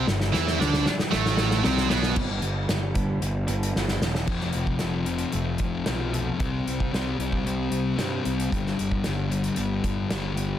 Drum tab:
CC |----------------|x---------------|x---------------|----------------|
HH |----------------|--x-x-x-x-xx----|--x-x-xxx-x-x-x-|x-x-x-x-x-x-x-xx|
SD |oooooooooooooooo|----o-------oooo|-o--o-------o---|----o-------o---|
BD |----------------|o-----o---------|o--o------o-----|o--o---o--------|

CC |----------------|
HH |x-x-x-xxx-x-x-x-|
SD |-o--o-------o---|
BD |o--o------o-----|